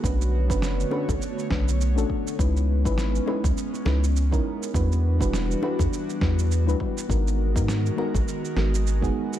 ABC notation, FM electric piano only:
X:1
M:4/4
L:1/16
Q:"Swing 16ths" 1/4=102
K:G#m
V:1 name="FM electric piano"
[=A,C=DFB]3 [A,CDFB]3 [A,CDFB] z3 [A,CDFB] z2 [A,CDF=A]3 | [G,CDEB]3 [G,CDEB]3 [G,CDEB] z3 [G,CDEB] z2 [G,CDEA]3 | [=G,=DEFB]3 [G,DEFB]3 [G,DEFB] z3 [G,DEFB]3 [G,DEFB] [G,DEFB]2 | [G,B,DFA]3 [G,B,DFA]3 [G,B,DFA] z3 [G,B,DFA] z2 [G,B,DFG]3 |]